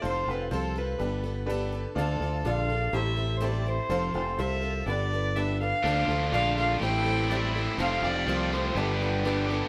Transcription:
<<
  \new Staff \with { instrumentName = "Fiddle" } { \time 4/4 \key f \lydian \tempo 4 = 124 c''8 b'8 a'8 b'4. r4 | a'4 f''4 e''8.~ e''32 c''32 d''8 c''8~ | c''8 c''8 e''4 d''4 e''8 f''8~ | f''4 f''8 f''8 g''4 d''8 e''8 |
f''8 d''4 c''8 b'4. r8 | }
  \new Staff \with { instrumentName = "Upright piano" } { \time 4/4 \key f \lydian <c' f' a' c''>4 <c' f' a' c''>4 <d' g' a' b'>4 <d' g' a' b'>4 | <d' f' a' d''>4 <d' f' a' d''>4 <e' g' a' c''>4 <e' g' a' c''>4 | <c' f' a' c''>4 <c' f' a' c''>4 <d' g' a' b'>4 <d' g' a' b'>4 | <d' f' a' d''>4 <d' f' a' d''>4 <e' g' a' c''>4 <e' g' a' c''>4 |
<c' f' a' c''>4 <c' f' a' c''>4 <d' g' a' b'>4 <d' g' a' b'>4 | }
  \new Staff \with { instrumentName = "Twelve-string acoustic guitar" } { \time 4/4 \key f \lydian <f c' f' a'>8 <c' f' a'>8 <f c' f' a'>8 <c' f' a'>8 <g b d' a'>8 <b d' a'>8 <g b d' a'>8 <b d' a'>8 | <d d' f' a'>8 <d' f' a'>8 <d d' f' a'>8 <d' f' a'>8 <g c' e' a'>8 <c' e' a'>8 <a, g c' e' a'>8 <c' e' a'>8 | <f c' f' a'>8 <c' f' a'>8 <f c' f' a'>8 <c' f' a'>8 <g b d' a'>8 <b d' a'>8 <g b d' a'>8 <b d' a'>8 | <d d' f' a'>8 <d' f' a'>8 <d d' f' a'>8 <d' f' a'>8 <g c' e' a'>8 <c' e' a'>8 <a, g c' e' a'>8 <c' e' a'>8 |
<f c' f' a'>8 <c' f' a'>8 <f c' f' a'>8 <c' f' a'>8 <g b d' a'>8 <b d' a'>8 <g b d' a'>8 <b d' a'>8 | }
  \new Staff \with { instrumentName = "Overdriven electric guitar" } { \time 4/4 \key f \lydian r1 | r1 | r1 | <d a d' f'>8 <a d' f'>8 <d a d' f'>8 <a d' f'>8 <a, e a c' e'>4 <a, e a c' e'>8 <a c' e'>8 |
<f, c f a c' f'>8 <f a c' f'>8 <f a c' f'>8 <f a c' f'>8 <g, d g b d' g'>4 <g, d g b d' g'>8 <g b d' g'>8 | }
  \new Staff \with { instrumentName = "Fingered electric bass" } { \clef bass \time 4/4 \key f \lydian f,,8 f,,8 c,4 g,,2 | d,8 d,8 bes,,4 a,,2 | f,,8 f,,8 c,4 g,,2 | d,8 d,8 bes,,4 a,,2 |
f,,8 f,,8 c,4 g,,2 | }
>>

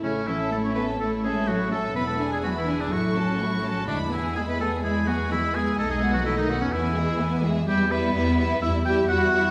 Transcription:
<<
  \new Staff \with { instrumentName = "Violin section" } { \time 4/4 \key a \major \tempo 4 = 126 cis''8 e''8 cis''8 e''8 cis''8 e''8 cis''8 e''8 | b''8 gis''8 b''8 gis''8 cis'''8 a''8 cis'''8 a''8 | b''8 gis''8 b''8 gis''8 b''8 gis''8 b''8 gis''8 | dis''8 fis''8 dis''8 fis''8 gis''8 e''8 gis''8 e''8 |
\key e \minor e''8 e''8 e''8 e''8 e''8 e''8 e''8 e''8 | }
  \new Staff \with { instrumentName = "Oboe" } { \time 4/4 \key a \major cis'8 e'8 a'16 cis''16 b'8 a'8 gis'8 fis'8 a'8 | b'16 a'8 gis'16 fis'16 e'8 d'16 fis'2 | d'8 e'8 gis'16 b'16 a'8 gis'8 fis'8 e'8 gis'8 | a'16 gis'8 fis'16 e'16 dis'8 cis'16 e'4. r8 |
\key e \minor g'8 b'4. e''8 g''8 fis''4 | }
  \new Staff \with { instrumentName = "Violin section" } { \time 4/4 \key a \major e'8 a'8 e'8 a'8 e'8 a'8 e'8 a'8 | e'8 gis'8 e'8 gis'8 e'8 a'8 e'8 a'8 | e'8 gis'8 e'8 gis'8 e'8 gis'8 e'8 gis'8 | dis'8 fis'8 dis'8 fis'8 e'8 gis'8 e'8 gis'8 |
\key e \minor e'8 e'8 e'8 e'8 e'8 e'8 e'8 e'8 | }
  \new Staff \with { instrumentName = "Viola section" } { \time 4/4 \key a \major a8 cis'8 a8 cis'8 a8 cis'8 a8 cis'8 | b8 d'8 b8 d'8 a8 cis'8 a8 cis'8 | gis8 b8 gis8 b8 gis8 b8 gis8 b8 | a8 b8 a8 b8 b8 gis8 b8 gis8 |
\key e \minor g8 g8 g8 g8 g8 g8 g8 g8 | }
  \new Staff \with { instrumentName = "Cello section" } { \clef bass \time 4/4 \key a \major cis8 e8 a16 cis'16 b8 a8 gis8 fis8 a8 | b16 a8 gis16 fis16 e8 d16 fis2 | d8 e8 gis16 b16 a8 gis8 fis8 e8 gis8 | a16 gis8 fis16 e16 dis8 cis16 e2 |
\key e \minor g8 b4. e'8 g'8 fis'4 | }
  \new Staff \with { instrumentName = "Double bass section" } { \clef bass \time 4/4 \key a \major a,,1 | e,,2 a,,2 | e,1 | b,,2 e,2 |
\key e \minor e,4 e,4 e,4 e,4 | }
>>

